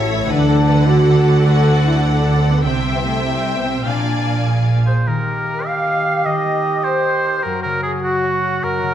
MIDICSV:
0, 0, Header, 1, 11, 480
1, 0, Start_track
1, 0, Tempo, 396825
1, 354, Time_signature, 12, 3, 24, 8
1, 10815, End_track
2, 0, Start_track
2, 0, Title_t, "Violin section"
2, 0, Program_c, 0, 48
2, 0, Note_on_c, 0, 76, 46
2, 313, Note_off_c, 0, 76, 0
2, 357, Note_on_c, 0, 78, 55
2, 3168, Note_off_c, 0, 78, 0
2, 3211, Note_on_c, 0, 79, 43
2, 4637, Note_off_c, 0, 79, 0
2, 4679, Note_on_c, 0, 80, 38
2, 5895, Note_off_c, 0, 80, 0
2, 10815, End_track
3, 0, Start_track
3, 0, Title_t, "Viola section"
3, 0, Program_c, 1, 48
3, 0, Note_on_c, 1, 69, 59
3, 0, Note_on_c, 1, 76, 53
3, 310, Note_off_c, 1, 76, 0
3, 349, Note_on_c, 1, 74, 62
3, 3164, Note_off_c, 1, 74, 0
3, 3169, Note_off_c, 1, 69, 0
3, 3210, Note_on_c, 1, 76, 49
3, 3211, Note_on_c, 1, 72, 48
3, 4637, Note_off_c, 1, 76, 0
3, 4638, Note_off_c, 1, 72, 0
3, 4663, Note_on_c, 1, 77, 32
3, 4664, Note_off_c, 1, 77, 0
3, 4664, Note_on_c, 1, 77, 33
3, 5888, Note_off_c, 1, 77, 0
3, 10815, End_track
4, 0, Start_track
4, 0, Title_t, "Violin section"
4, 0, Program_c, 2, 48
4, 0, Note_on_c, 2, 73, 59
4, 331, Note_off_c, 2, 73, 0
4, 351, Note_on_c, 2, 71, 57
4, 574, Note_on_c, 2, 69, 50
4, 590, Note_off_c, 2, 71, 0
4, 671, Note_off_c, 2, 69, 0
4, 827, Note_on_c, 2, 71, 52
4, 1048, Note_on_c, 2, 69, 60
4, 1061, Note_off_c, 2, 71, 0
4, 1771, Note_on_c, 2, 66, 58
4, 1772, Note_off_c, 2, 69, 0
4, 2492, Note_off_c, 2, 66, 0
4, 2493, Note_on_c, 2, 69, 53
4, 3202, Note_on_c, 2, 76, 56
4, 3213, Note_off_c, 2, 69, 0
4, 4633, Note_off_c, 2, 76, 0
4, 4670, Note_on_c, 2, 74, 47
4, 5747, Note_off_c, 2, 74, 0
4, 10815, End_track
5, 0, Start_track
5, 0, Title_t, "Flute section"
5, 0, Program_c, 3, 73
5, 5877, Note_on_c, 3, 72, 38
5, 5950, Note_off_c, 3, 72, 0
5, 6126, Note_on_c, 3, 70, 43
5, 6836, Note_off_c, 3, 70, 0
5, 6856, Note_on_c, 3, 77, 58
5, 7560, Note_off_c, 3, 77, 0
5, 7575, Note_on_c, 3, 75, 47
5, 8277, Note_on_c, 3, 72, 56
5, 8290, Note_off_c, 3, 75, 0
5, 8988, Note_off_c, 3, 72, 0
5, 9006, Note_on_c, 3, 70, 41
5, 9219, Note_off_c, 3, 70, 0
5, 9234, Note_on_c, 3, 70, 50
5, 9474, Note_off_c, 3, 70, 0
5, 9483, Note_on_c, 3, 68, 44
5, 9715, Note_on_c, 3, 66, 50
5, 9718, Note_off_c, 3, 68, 0
5, 10423, Note_off_c, 3, 66, 0
5, 10436, Note_on_c, 3, 70, 50
5, 10815, Note_off_c, 3, 70, 0
5, 10815, End_track
6, 0, Start_track
6, 0, Title_t, "Oboe"
6, 0, Program_c, 4, 68
6, 5881, Note_on_c, 4, 72, 49
6, 6136, Note_on_c, 4, 70, 52
6, 6155, Note_off_c, 4, 72, 0
6, 6844, Note_on_c, 4, 77, 69
6, 6862, Note_off_c, 4, 70, 0
6, 7566, Note_on_c, 4, 75, 57
6, 7585, Note_off_c, 4, 77, 0
6, 8271, Note_on_c, 4, 72, 66
6, 8289, Note_off_c, 4, 75, 0
6, 8983, Note_on_c, 4, 70, 52
6, 9001, Note_off_c, 4, 72, 0
6, 9219, Note_off_c, 4, 70, 0
6, 9226, Note_on_c, 4, 70, 56
6, 9462, Note_off_c, 4, 70, 0
6, 9469, Note_on_c, 4, 68, 52
6, 9580, Note_off_c, 4, 68, 0
6, 9720, Note_on_c, 4, 66, 60
6, 10443, Note_on_c, 4, 70, 71
6, 10461, Note_off_c, 4, 66, 0
6, 10815, Note_off_c, 4, 70, 0
6, 10815, End_track
7, 0, Start_track
7, 0, Title_t, "Harp"
7, 0, Program_c, 5, 46
7, 0, Note_on_c, 5, 45, 50
7, 0, Note_on_c, 5, 52, 43
7, 0, Note_on_c, 5, 69, 41
7, 0, Note_on_c, 5, 76, 42
7, 110, Note_on_c, 5, 64, 43
7, 344, Note_on_c, 5, 50, 52
7, 370, Note_off_c, 5, 64, 0
7, 371, Note_off_c, 5, 45, 0
7, 373, Note_off_c, 5, 52, 0
7, 373, Note_off_c, 5, 76, 0
7, 587, Note_on_c, 5, 62, 43
7, 806, Note_off_c, 5, 69, 0
7, 821, Note_on_c, 5, 69, 43
7, 1062, Note_on_c, 5, 74, 44
7, 1286, Note_off_c, 5, 69, 0
7, 1301, Note_on_c, 5, 69, 41
7, 1538, Note_on_c, 5, 66, 39
7, 1774, Note_on_c, 5, 57, 41
7, 1995, Note_off_c, 5, 62, 0
7, 2009, Note_on_c, 5, 62, 36
7, 2233, Note_off_c, 5, 69, 0
7, 2247, Note_on_c, 5, 69, 39
7, 2480, Note_off_c, 5, 74, 0
7, 2494, Note_on_c, 5, 74, 39
7, 2713, Note_off_c, 5, 69, 0
7, 2728, Note_on_c, 5, 69, 35
7, 2956, Note_off_c, 5, 66, 0
7, 2971, Note_on_c, 5, 66, 36
7, 3214, Note_on_c, 5, 48, 43
7, 3230, Note_off_c, 5, 50, 0
7, 3230, Note_off_c, 5, 62, 0
7, 3230, Note_off_c, 5, 69, 0
7, 3231, Note_off_c, 5, 57, 0
7, 3232, Note_off_c, 5, 66, 0
7, 3233, Note_off_c, 5, 74, 0
7, 3456, Note_on_c, 5, 64, 33
7, 3700, Note_on_c, 5, 72, 35
7, 3935, Note_on_c, 5, 76, 33
7, 4168, Note_off_c, 5, 72, 0
7, 4183, Note_on_c, 5, 72, 34
7, 4428, Note_on_c, 5, 67, 27
7, 4666, Note_on_c, 5, 46, 36
7, 4687, Note_off_c, 5, 76, 0
7, 4688, Note_off_c, 5, 48, 0
7, 4689, Note_off_c, 5, 64, 0
7, 4690, Note_off_c, 5, 67, 0
7, 4690, Note_off_c, 5, 72, 0
7, 4917, Note_on_c, 5, 65, 27
7, 5161, Note_on_c, 5, 77, 34
7, 5398, Note_on_c, 5, 68, 28
7, 5633, Note_off_c, 5, 77, 0
7, 5647, Note_on_c, 5, 77, 27
7, 5873, Note_off_c, 5, 68, 0
7, 5887, Note_on_c, 5, 68, 28
7, 6129, Note_on_c, 5, 51, 42
7, 6150, Note_off_c, 5, 46, 0
7, 6150, Note_off_c, 5, 68, 0
7, 6152, Note_off_c, 5, 77, 0
7, 6153, Note_off_c, 5, 65, 0
7, 6365, Note_on_c, 5, 58, 33
7, 6608, Note_on_c, 5, 70, 32
7, 6851, Note_on_c, 5, 79, 35
7, 7088, Note_on_c, 5, 75, 36
7, 7306, Note_off_c, 5, 70, 0
7, 7321, Note_on_c, 5, 70, 31
7, 7550, Note_off_c, 5, 51, 0
7, 7564, Note_on_c, 5, 51, 36
7, 7792, Note_off_c, 5, 58, 0
7, 7806, Note_on_c, 5, 58, 31
7, 8026, Note_off_c, 5, 70, 0
7, 8040, Note_on_c, 5, 70, 35
7, 8272, Note_off_c, 5, 79, 0
7, 8286, Note_on_c, 5, 79, 38
7, 8516, Note_off_c, 5, 75, 0
7, 8531, Note_on_c, 5, 75, 35
7, 8759, Note_off_c, 5, 70, 0
7, 8774, Note_on_c, 5, 70, 34
7, 9012, Note_on_c, 5, 42, 45
7, 9023, Note_off_c, 5, 51, 0
7, 9026, Note_off_c, 5, 79, 0
7, 9029, Note_off_c, 5, 75, 0
7, 9252, Note_on_c, 5, 49, 35
7, 9479, Note_off_c, 5, 70, 0
7, 9493, Note_on_c, 5, 70, 33
7, 9725, Note_on_c, 5, 78, 37
7, 9963, Note_on_c, 5, 73, 37
7, 10187, Note_off_c, 5, 70, 0
7, 10202, Note_on_c, 5, 70, 34
7, 10424, Note_off_c, 5, 42, 0
7, 10439, Note_on_c, 5, 42, 39
7, 10665, Note_off_c, 5, 49, 0
7, 10679, Note_on_c, 5, 49, 33
7, 10815, Note_off_c, 5, 42, 0
7, 10815, Note_off_c, 5, 49, 0
7, 10815, Note_off_c, 5, 58, 0
7, 10815, Note_off_c, 5, 70, 0
7, 10815, Note_off_c, 5, 73, 0
7, 10815, Note_off_c, 5, 78, 0
7, 10815, End_track
8, 0, Start_track
8, 0, Title_t, "Trumpet"
8, 0, Program_c, 6, 56
8, 6133, Note_on_c, 6, 67, 46
8, 8960, Note_off_c, 6, 67, 0
8, 9015, Note_on_c, 6, 66, 50
8, 10815, Note_off_c, 6, 66, 0
8, 10815, End_track
9, 0, Start_track
9, 0, Title_t, "French horn section"
9, 0, Program_c, 7, 60
9, 2, Note_on_c, 7, 66, 66
9, 101, Note_on_c, 7, 64, 71
9, 116, Note_off_c, 7, 66, 0
9, 346, Note_off_c, 7, 64, 0
9, 349, Note_on_c, 7, 62, 76
9, 1050, Note_off_c, 7, 62, 0
9, 1057, Note_on_c, 7, 66, 77
9, 1777, Note_off_c, 7, 66, 0
9, 1779, Note_on_c, 7, 69, 74
9, 2130, Note_off_c, 7, 69, 0
9, 2143, Note_on_c, 7, 62, 55
9, 2251, Note_on_c, 7, 64, 63
9, 2258, Note_off_c, 7, 62, 0
9, 2360, Note_off_c, 7, 64, 0
9, 2486, Note_on_c, 7, 62, 61
9, 2844, Note_off_c, 7, 62, 0
9, 2863, Note_on_c, 7, 60, 55
9, 2968, Note_on_c, 7, 59, 57
9, 2979, Note_off_c, 7, 60, 0
9, 3203, Note_on_c, 7, 60, 56
9, 3206, Note_off_c, 7, 59, 0
9, 3562, Note_off_c, 7, 60, 0
9, 3581, Note_on_c, 7, 59, 55
9, 3689, Note_on_c, 7, 57, 51
9, 3699, Note_off_c, 7, 59, 0
9, 3919, Note_on_c, 7, 55, 53
9, 3935, Note_off_c, 7, 57, 0
9, 4285, Note_off_c, 7, 55, 0
9, 4301, Note_on_c, 7, 59, 44
9, 4416, Note_on_c, 7, 60, 43
9, 4424, Note_off_c, 7, 59, 0
9, 4648, Note_on_c, 7, 62, 51
9, 4665, Note_off_c, 7, 60, 0
9, 5377, Note_off_c, 7, 62, 0
9, 6116, Note_on_c, 7, 51, 46
9, 8952, Note_off_c, 7, 51, 0
9, 9000, Note_on_c, 7, 54, 51
9, 10815, Note_off_c, 7, 54, 0
9, 10815, End_track
10, 0, Start_track
10, 0, Title_t, "Cello section"
10, 0, Program_c, 8, 48
10, 0, Note_on_c, 8, 45, 52
10, 305, Note_off_c, 8, 45, 0
10, 338, Note_on_c, 8, 50, 53
10, 3200, Note_on_c, 8, 48, 44
10, 3207, Note_off_c, 8, 50, 0
10, 4657, Note_on_c, 8, 46, 38
10, 4661, Note_off_c, 8, 48, 0
10, 5860, Note_off_c, 8, 46, 0
10, 10815, End_track
11, 0, Start_track
11, 0, Title_t, "Double bass section"
11, 0, Program_c, 10, 48
11, 0, Note_on_c, 10, 33, 57
11, 307, Note_off_c, 10, 33, 0
11, 357, Note_on_c, 10, 38, 59
11, 3206, Note_on_c, 10, 36, 47
11, 3217, Note_off_c, 10, 38, 0
11, 4664, Note_off_c, 10, 36, 0
11, 4671, Note_on_c, 10, 34, 38
11, 5867, Note_off_c, 10, 34, 0
11, 10815, End_track
0, 0, End_of_file